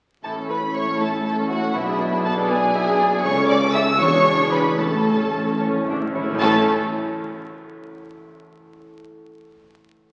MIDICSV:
0, 0, Header, 1, 10, 480
1, 0, Start_track
1, 0, Key_signature, 3, "major"
1, 0, Tempo, 502934
1, 227, Time_signature, 6, 3, 24, 8
1, 3582, Tempo, 531915
1, 5982, Tempo, 516796
1, 9425, End_track
2, 0, Start_track
2, 0, Title_t, "Violin section"
2, 0, Program_c, 0, 48
2, 228, Note_on_c, 0, 81, 46
2, 304, Note_off_c, 0, 81, 0
2, 465, Note_on_c, 0, 83, 53
2, 708, Note_off_c, 0, 83, 0
2, 710, Note_on_c, 0, 85, 57
2, 954, Note_off_c, 0, 85, 0
2, 961, Note_on_c, 0, 81, 55
2, 1182, Note_off_c, 0, 81, 0
2, 1194, Note_on_c, 0, 81, 55
2, 1270, Note_off_c, 0, 81, 0
2, 1439, Note_on_c, 0, 78, 59
2, 1670, Note_off_c, 0, 78, 0
2, 1673, Note_on_c, 0, 76, 51
2, 2143, Note_on_c, 0, 81, 74
2, 2148, Note_off_c, 0, 76, 0
2, 2219, Note_off_c, 0, 81, 0
2, 2378, Note_on_c, 0, 80, 74
2, 3077, Note_off_c, 0, 80, 0
2, 3088, Note_on_c, 0, 85, 82
2, 3325, Note_on_c, 0, 86, 91
2, 3328, Note_off_c, 0, 85, 0
2, 3569, Note_on_c, 0, 88, 92
2, 3571, Note_off_c, 0, 86, 0
2, 3803, Note_on_c, 0, 85, 103
2, 3809, Note_off_c, 0, 88, 0
2, 4283, Note_off_c, 0, 85, 0
2, 4291, Note_on_c, 0, 83, 76
2, 4520, Note_on_c, 0, 81, 65
2, 4532, Note_off_c, 0, 83, 0
2, 5250, Note_off_c, 0, 81, 0
2, 5985, Note_on_c, 0, 81, 87
2, 6254, Note_off_c, 0, 81, 0
2, 9425, End_track
3, 0, Start_track
3, 0, Title_t, "Violin section"
3, 0, Program_c, 1, 48
3, 225, Note_on_c, 1, 69, 44
3, 454, Note_off_c, 1, 69, 0
3, 474, Note_on_c, 1, 71, 39
3, 550, Note_off_c, 1, 71, 0
3, 703, Note_on_c, 1, 73, 46
3, 946, Note_off_c, 1, 73, 0
3, 952, Note_on_c, 1, 69, 49
3, 1185, Note_off_c, 1, 69, 0
3, 1196, Note_on_c, 1, 69, 53
3, 1427, Note_on_c, 1, 66, 50
3, 1429, Note_off_c, 1, 69, 0
3, 1659, Note_on_c, 1, 64, 51
3, 1663, Note_off_c, 1, 66, 0
3, 2139, Note_on_c, 1, 69, 66
3, 2141, Note_off_c, 1, 64, 0
3, 2371, Note_on_c, 1, 68, 67
3, 2382, Note_off_c, 1, 69, 0
3, 3087, Note_on_c, 1, 73, 77
3, 3088, Note_off_c, 1, 68, 0
3, 3330, Note_on_c, 1, 74, 74
3, 3333, Note_off_c, 1, 73, 0
3, 3406, Note_off_c, 1, 74, 0
3, 3569, Note_on_c, 1, 76, 71
3, 3642, Note_off_c, 1, 76, 0
3, 3802, Note_on_c, 1, 73, 91
3, 4273, Note_off_c, 1, 73, 0
3, 4277, Note_on_c, 1, 71, 66
3, 4523, Note_on_c, 1, 69, 57
3, 4525, Note_off_c, 1, 71, 0
3, 5237, Note_off_c, 1, 69, 0
3, 5979, Note_on_c, 1, 69, 79
3, 6251, Note_off_c, 1, 69, 0
3, 9425, End_track
4, 0, Start_track
4, 0, Title_t, "Harp"
4, 0, Program_c, 2, 46
4, 235, Note_on_c, 2, 45, 41
4, 478, Note_on_c, 2, 61, 30
4, 721, Note_on_c, 2, 73, 33
4, 959, Note_on_c, 2, 64, 38
4, 1192, Note_on_c, 2, 76, 41
4, 1421, Note_off_c, 2, 73, 0
4, 1433, Note_on_c, 2, 73, 42
4, 1666, Note_on_c, 2, 47, 53
4, 1690, Note_off_c, 2, 73, 0
4, 1693, Note_off_c, 2, 61, 0
4, 1695, Note_off_c, 2, 45, 0
4, 1906, Note_on_c, 2, 62, 42
4, 2151, Note_on_c, 2, 71, 45
4, 2393, Note_on_c, 2, 74, 55
4, 2614, Note_off_c, 2, 76, 0
4, 2625, Note_on_c, 2, 76, 51
4, 2849, Note_off_c, 2, 74, 0
4, 2861, Note_on_c, 2, 74, 55
4, 3098, Note_on_c, 2, 49, 63
4, 3111, Note_off_c, 2, 47, 0
4, 3113, Note_off_c, 2, 62, 0
4, 3116, Note_off_c, 2, 71, 0
4, 3116, Note_off_c, 2, 74, 0
4, 3338, Note_on_c, 2, 61, 53
4, 3568, Note_off_c, 2, 64, 0
4, 3577, Note_on_c, 2, 64, 45
4, 3586, Note_on_c, 2, 69, 51
4, 3807, Note_on_c, 2, 52, 61
4, 3835, Note_off_c, 2, 61, 0
4, 3835, Note_off_c, 2, 69, 0
4, 3836, Note_off_c, 2, 49, 0
4, 4044, Note_on_c, 2, 62, 45
4, 4272, Note_off_c, 2, 64, 0
4, 4280, Note_on_c, 2, 64, 45
4, 4288, Note_on_c, 2, 68, 50
4, 4521, Note_on_c, 2, 45, 52
4, 4546, Note_off_c, 2, 52, 0
4, 4547, Note_off_c, 2, 62, 0
4, 4548, Note_off_c, 2, 68, 0
4, 4765, Note_on_c, 2, 61, 40
4, 5007, Note_on_c, 2, 69, 42
4, 5252, Note_on_c, 2, 73, 43
4, 5486, Note_off_c, 2, 76, 0
4, 5497, Note_on_c, 2, 76, 44
4, 5734, Note_off_c, 2, 73, 0
4, 5745, Note_on_c, 2, 73, 47
4, 5917, Note_off_c, 2, 45, 0
4, 5921, Note_on_c, 2, 45, 75
4, 5946, Note_on_c, 2, 57, 71
4, 5967, Note_off_c, 2, 61, 0
4, 5971, Note_on_c, 2, 61, 79
4, 5975, Note_off_c, 2, 64, 0
4, 5975, Note_off_c, 2, 76, 0
4, 5977, Note_off_c, 2, 69, 0
4, 6000, Note_on_c, 2, 64, 68
4, 6027, Note_on_c, 2, 69, 72
4, 6052, Note_on_c, 2, 76, 70
4, 6254, Note_off_c, 2, 45, 0
4, 6254, Note_off_c, 2, 57, 0
4, 6254, Note_off_c, 2, 61, 0
4, 6255, Note_off_c, 2, 64, 0
4, 6255, Note_off_c, 2, 76, 0
4, 6256, Note_off_c, 2, 69, 0
4, 7442, Note_off_c, 2, 73, 0
4, 9425, End_track
5, 0, Start_track
5, 0, Title_t, "Viola section"
5, 0, Program_c, 3, 48
5, 220, Note_on_c, 3, 64, 35
5, 222, Note_on_c, 3, 57, 31
5, 334, Note_on_c, 3, 69, 31
5, 338, Note_off_c, 3, 64, 0
5, 339, Note_off_c, 3, 57, 0
5, 339, Note_on_c, 3, 61, 32
5, 462, Note_on_c, 3, 57, 32
5, 465, Note_off_c, 3, 69, 0
5, 466, Note_on_c, 3, 64, 32
5, 467, Note_off_c, 3, 61, 0
5, 582, Note_on_c, 3, 61, 33
5, 583, Note_on_c, 3, 69, 33
5, 590, Note_off_c, 3, 57, 0
5, 592, Note_off_c, 3, 64, 0
5, 704, Note_on_c, 3, 64, 35
5, 705, Note_on_c, 3, 57, 33
5, 710, Note_off_c, 3, 61, 0
5, 710, Note_off_c, 3, 69, 0
5, 818, Note_on_c, 3, 69, 37
5, 822, Note_off_c, 3, 64, 0
5, 823, Note_off_c, 3, 57, 0
5, 824, Note_on_c, 3, 61, 37
5, 940, Note_on_c, 3, 64, 37
5, 942, Note_on_c, 3, 57, 36
5, 948, Note_off_c, 3, 69, 0
5, 951, Note_off_c, 3, 61, 0
5, 1060, Note_on_c, 3, 61, 35
5, 1061, Note_on_c, 3, 69, 36
5, 1069, Note_off_c, 3, 64, 0
5, 1070, Note_off_c, 3, 57, 0
5, 1187, Note_on_c, 3, 57, 37
5, 1187, Note_on_c, 3, 64, 37
5, 1188, Note_off_c, 3, 61, 0
5, 1189, Note_off_c, 3, 69, 0
5, 1302, Note_off_c, 3, 57, 0
5, 1302, Note_off_c, 3, 64, 0
5, 1302, Note_on_c, 3, 69, 38
5, 1307, Note_on_c, 3, 61, 40
5, 1426, Note_on_c, 3, 64, 38
5, 1428, Note_off_c, 3, 69, 0
5, 1429, Note_on_c, 3, 57, 37
5, 1430, Note_off_c, 3, 61, 0
5, 1546, Note_on_c, 3, 69, 36
5, 1548, Note_on_c, 3, 61, 38
5, 1549, Note_off_c, 3, 64, 0
5, 1551, Note_off_c, 3, 57, 0
5, 1653, Note_on_c, 3, 59, 44
5, 1655, Note_on_c, 3, 64, 42
5, 1669, Note_off_c, 3, 61, 0
5, 1669, Note_off_c, 3, 69, 0
5, 1770, Note_on_c, 3, 62, 42
5, 1772, Note_off_c, 3, 59, 0
5, 1773, Note_off_c, 3, 64, 0
5, 1773, Note_on_c, 3, 68, 41
5, 1893, Note_on_c, 3, 59, 42
5, 1895, Note_on_c, 3, 64, 42
5, 1899, Note_off_c, 3, 62, 0
5, 1900, Note_off_c, 3, 68, 0
5, 2019, Note_on_c, 3, 62, 44
5, 2020, Note_off_c, 3, 59, 0
5, 2021, Note_off_c, 3, 64, 0
5, 2022, Note_on_c, 3, 68, 47
5, 2143, Note_off_c, 3, 62, 0
5, 2144, Note_off_c, 3, 68, 0
5, 2146, Note_on_c, 3, 59, 49
5, 2148, Note_on_c, 3, 64, 47
5, 2258, Note_off_c, 3, 59, 0
5, 2259, Note_off_c, 3, 64, 0
5, 2261, Note_on_c, 3, 62, 53
5, 2265, Note_on_c, 3, 68, 53
5, 2383, Note_off_c, 3, 62, 0
5, 2385, Note_off_c, 3, 68, 0
5, 2386, Note_on_c, 3, 59, 52
5, 2387, Note_on_c, 3, 64, 51
5, 2505, Note_off_c, 3, 59, 0
5, 2505, Note_off_c, 3, 64, 0
5, 2507, Note_on_c, 3, 68, 51
5, 2508, Note_on_c, 3, 62, 50
5, 2624, Note_off_c, 3, 68, 0
5, 2625, Note_off_c, 3, 62, 0
5, 2634, Note_on_c, 3, 64, 54
5, 2637, Note_on_c, 3, 59, 53
5, 2739, Note_off_c, 3, 64, 0
5, 2740, Note_off_c, 3, 59, 0
5, 2746, Note_on_c, 3, 68, 57
5, 2749, Note_on_c, 3, 62, 52
5, 2861, Note_off_c, 3, 68, 0
5, 2862, Note_off_c, 3, 62, 0
5, 2870, Note_on_c, 3, 59, 55
5, 2871, Note_on_c, 3, 64, 50
5, 2982, Note_off_c, 3, 59, 0
5, 2983, Note_off_c, 3, 64, 0
5, 2985, Note_on_c, 3, 68, 47
5, 2986, Note_on_c, 3, 62, 44
5, 3100, Note_off_c, 3, 62, 0
5, 3100, Note_off_c, 3, 68, 0
5, 3104, Note_on_c, 3, 69, 65
5, 3105, Note_on_c, 3, 61, 67
5, 3783, Note_off_c, 3, 69, 0
5, 3784, Note_off_c, 3, 61, 0
5, 3816, Note_on_c, 3, 68, 60
5, 3817, Note_on_c, 3, 62, 61
5, 4527, Note_on_c, 3, 61, 46
5, 4529, Note_on_c, 3, 69, 47
5, 4531, Note_off_c, 3, 68, 0
5, 4532, Note_off_c, 3, 62, 0
5, 5191, Note_off_c, 3, 61, 0
5, 5193, Note_off_c, 3, 69, 0
5, 5249, Note_on_c, 3, 61, 54
5, 5478, Note_off_c, 3, 61, 0
5, 5505, Note_on_c, 3, 62, 56
5, 5577, Note_off_c, 3, 62, 0
5, 5739, Note_on_c, 3, 64, 53
5, 5976, Note_off_c, 3, 64, 0
5, 5976, Note_on_c, 3, 61, 73
5, 5978, Note_on_c, 3, 69, 75
5, 6249, Note_off_c, 3, 61, 0
5, 6250, Note_off_c, 3, 69, 0
5, 9425, End_track
6, 0, Start_track
6, 0, Title_t, "Cello section"
6, 0, Program_c, 4, 48
6, 226, Note_on_c, 4, 45, 40
6, 1633, Note_off_c, 4, 45, 0
6, 1672, Note_on_c, 4, 47, 47
6, 3094, Note_on_c, 4, 49, 65
6, 3095, Note_off_c, 4, 47, 0
6, 3779, Note_off_c, 4, 49, 0
6, 3808, Note_on_c, 4, 40, 65
6, 4524, Note_on_c, 4, 45, 54
6, 4527, Note_off_c, 4, 40, 0
6, 5766, Note_off_c, 4, 45, 0
6, 5986, Note_on_c, 4, 45, 89
6, 6254, Note_off_c, 4, 45, 0
6, 9425, End_track
7, 0, Start_track
7, 0, Title_t, "Timpani"
7, 0, Program_c, 5, 47
7, 4527, Note_on_c, 5, 45, 32
7, 4593, Note_off_c, 5, 45, 0
7, 4742, Note_on_c, 5, 45, 31
7, 4802, Note_off_c, 5, 45, 0
7, 4887, Note_on_c, 5, 45, 43
7, 4946, Note_off_c, 5, 45, 0
7, 4956, Note_on_c, 5, 45, 43
7, 5011, Note_off_c, 5, 45, 0
7, 5021, Note_on_c, 5, 45, 47
7, 5090, Note_off_c, 5, 45, 0
7, 5100, Note_on_c, 5, 45, 52
7, 5151, Note_off_c, 5, 45, 0
7, 5162, Note_on_c, 5, 45, 48
7, 5231, Note_off_c, 5, 45, 0
7, 5242, Note_on_c, 5, 45, 53
7, 5307, Note_off_c, 5, 45, 0
7, 5317, Note_on_c, 5, 45, 56
7, 5376, Note_off_c, 5, 45, 0
7, 5387, Note_on_c, 5, 45, 67
7, 5449, Note_off_c, 5, 45, 0
7, 5460, Note_on_c, 5, 45, 72
7, 5516, Note_off_c, 5, 45, 0
7, 5527, Note_on_c, 5, 45, 69
7, 5593, Note_off_c, 5, 45, 0
7, 5603, Note_on_c, 5, 45, 72
7, 5665, Note_off_c, 5, 45, 0
7, 5676, Note_on_c, 5, 45, 76
7, 5740, Note_off_c, 5, 45, 0
7, 5751, Note_on_c, 5, 45, 82
7, 5810, Note_off_c, 5, 45, 0
7, 5820, Note_on_c, 5, 45, 87
7, 5878, Note_off_c, 5, 45, 0
7, 5889, Note_on_c, 5, 45, 93
7, 5957, Note_off_c, 5, 45, 0
7, 5982, Note_on_c, 5, 45, 95
7, 6207, Note_off_c, 5, 45, 0
7, 9425, End_track
8, 0, Start_track
8, 0, Title_t, "Double bass section"
8, 0, Program_c, 6, 48
8, 224, Note_on_c, 6, 33, 40
8, 1632, Note_off_c, 6, 33, 0
8, 1671, Note_on_c, 6, 35, 48
8, 3095, Note_off_c, 6, 35, 0
8, 3096, Note_on_c, 6, 37, 64
8, 3780, Note_off_c, 6, 37, 0
8, 3819, Note_on_c, 6, 28, 69
8, 4532, Note_off_c, 6, 28, 0
8, 4532, Note_on_c, 6, 33, 47
8, 5770, Note_off_c, 6, 33, 0
8, 5978, Note_on_c, 6, 33, 77
8, 6250, Note_off_c, 6, 33, 0
8, 9425, End_track
9, 0, Start_track
9, 0, Title_t, "Tuba"
9, 0, Program_c, 7, 58
9, 222, Note_on_c, 7, 33, 43
9, 1670, Note_on_c, 7, 35, 50
9, 1684, Note_off_c, 7, 33, 0
9, 3089, Note_off_c, 7, 35, 0
9, 3094, Note_on_c, 7, 37, 71
9, 3812, Note_on_c, 7, 28, 66
9, 3826, Note_off_c, 7, 37, 0
9, 4529, Note_off_c, 7, 28, 0
9, 4533, Note_on_c, 7, 33, 54
9, 5770, Note_off_c, 7, 33, 0
9, 5988, Note_on_c, 7, 33, 85
9, 6189, Note_off_c, 7, 33, 0
9, 9425, End_track
10, 0, Start_track
10, 0, Title_t, "Drums"
10, 5981, Note_on_c, 9, 35, 77
10, 5981, Note_on_c, 9, 49, 67
10, 6074, Note_off_c, 9, 35, 0
10, 6074, Note_off_c, 9, 49, 0
10, 9425, End_track
0, 0, End_of_file